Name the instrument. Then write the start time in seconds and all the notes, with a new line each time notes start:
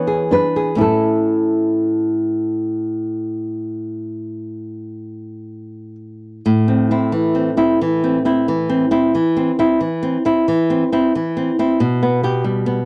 nylon-string guitar
Already playing: E3 B3 C#5
0.07 G#4
0.31 D4 B4
0.56 G#4
0.75 A2 C#4 E4
0.81 A4
6.46 A2
6.68 C4
6.91 C4 E4
7.12 E3
7.35 C4
7.57 C4 E4
7.81 E3
8.04 C4
8.25 C4 E4
8.48 E3
8.69 C4
8.91 C4 E4
9.15 E3
9.37 C4
9.59 C4 E4
9.81 E3
10.03 C4
10.25 C4 E4
10.48 E3
10.70 C4
10.92 C4 E4
11.15 E3
11.37 C4
11.59 C4 E4
11.80 B2
12.03 B3
12.23 B3 G4
12.44 G3
12.66 B3